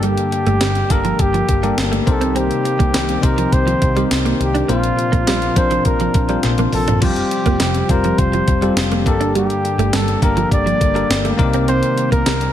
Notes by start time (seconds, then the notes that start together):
Already playing: G1 G2 D3 G3 A#3 D4 G4 A4 A#4
0.03 G3 G4, closed hi-hat
0.17 closed hi-hat
0.32 muted clean electric guitar stroke, closed hi-hat
0.46 G1 A3, closed hi-hat
0.61 G1 G3, snare, closed hi-hat, tambourine
0.75 closed hi-hat
0.90 G1 A#3 D4 G4 A4 A#4, muted clean electric guitar stroke, kick, closed hi-hat
1.05 F3, closed hi-hat
1.19 G1 G4, kick, closed hi-hat
1.34 F3, closed hi-hat
1.48 G1, muted clean electric guitar stroke, kick, closed hi-hat
1.63 G3 A#3 D4 G4 A4 A#4, closed hi-hat
1.78 G1, snare, closed hi-hat, tambourine
1.92 A3, closed hi-hat
2.06 C2 C3 D#3 C4 D#4 G4 A4 A#4 C5, muted clean electric guitar stroke, kick, closed hi-hat
2.21 C4, closed hi-hat
2.36 C4 G4, closed hi-hat
2.51 closed hi-hat
2.65 muted clean electric guitar stroke, closed hi-hat
2.79 C2 A#3, kick, closed hi-hat
2.94 C2 G3, snare, closed hi-hat, tambourine
3.09 closed hi-hat
3.22 C2 C4 D#4 G4 A#4 C5, muted clean electric guitar stroke, kick, closed hi-hat
3.38 F3, closed hi-hat
3.52 C2 C5, kick, closed hi-hat
3.67 F3, closed hi-hat
3.82 C2, muted clean electric guitar stroke, kick, closed hi-hat
3.96 G3 C4 D#4 G4 A#4 C5, closed hi-hat
4.11 C2, snare, closed hi-hat, tambourine
4.25 A#3, closed hi-hat
4.40 C2 G4, muted clean electric guitar stroke, closed hi-hat
4.55 D4, closed hi-hat
4.68 A#1 A#2 C3 F3 A#3 C4 D4 F4 A#4 C5, closed hi-hat
4.84 closed hi-hat
4.97 muted clean electric guitar stroke, closed hi-hat
5.12 A#1 A#3, kick, closed hi-hat
5.27 A#1 G3, snare, closed hi-hat, tambourine
5.42 closed hi-hat
5.56 A#1 C4 D4 F4 A#4 C5, muted clean electric guitar stroke, kick, closed hi-hat
5.71 F3, closed hi-hat
5.85 A#1 A#4, kick, closed hi-hat
6.00 F3, closed hi-hat
6.14 A#1, muted clean electric guitar stroke, kick, closed hi-hat
6.29 G3 C4 D4 F4 A#4 C5, closed hi-hat
6.43 A#1, snare, closed hi-hat
6.58 A#3, closed hi-hat, high tom
6.73 A#1 A4, muted clean electric guitar stroke, mid tom, open hi-hat
6.88 D4, closed hi-hat, floor tom
7.01 F1 F3 G3 C4 F4 G4 C5, kick, crash
7.16 closed hi-hat
7.31 muted clean electric guitar stroke, closed hi-hat
7.46 F1 A#3, kick, closed hi-hat
7.60 F1 G3, snare, closed hi-hat, tambourine
7.75 closed hi-hat
7.89 F1 G3 C4 F4 G4 A#4 C5, muted clean electric guitar stroke, kick, closed hi-hat
8.04 F3, closed hi-hat
8.18 F1 C5, kick, closed hi-hat
8.33 F3, closed hi-hat
8.48 F1, muted clean electric guitar stroke, kick, closed hi-hat
8.62 G3 C4 F4 G4 A4, closed hi-hat
8.76 F1, snare, closed hi-hat, tambourine
8.91 A#3, closed hi-hat
9.05 G1 G2 D3 A#3 D4 G4 A4 A#4, muted clean electric guitar stroke, kick, closed hi-hat
9.21 D4, closed hi-hat
9.35 G3 G4, closed hi-hat
9.50 closed hi-hat
9.65 muted clean electric guitar stroke, closed hi-hat
9.78 G1 A3, closed hi-hat
9.93 G1 G3 A4, snare, closed hi-hat, tambourine
10.08 closed hi-hat
10.22 G1 A#3 D4 G4 A4 A#4, muted clean electric guitar stroke, kick, closed hi-hat
10.37 F3, closed hi-hat
10.51 G1 D5, kick, closed hi-hat
10.66 F3, closed hi-hat
10.81 G1, muted clean electric guitar stroke, kick, closed hi-hat
10.94 G3 A#3 D4 G4 A4 A#4, closed hi-hat
11.10 G1, snare, closed hi-hat, tambourine
11.25 A3, closed hi-hat
11.37 C2 C3 D#3 A#3 C4 D#4 G4 A#4, muted clean electric guitar stroke, kick, closed hi-hat
11.53 C4, closed hi-hat
11.68 C4 C5, closed hi-hat
11.83 closed hi-hat
11.98 muted clean electric guitar stroke, closed hi-hat
12.12 C2 A#3 A#4, kick, closed hi-hat
12.26 C2 G3, snare, closed hi-hat, tambourine
12.41 closed hi-hat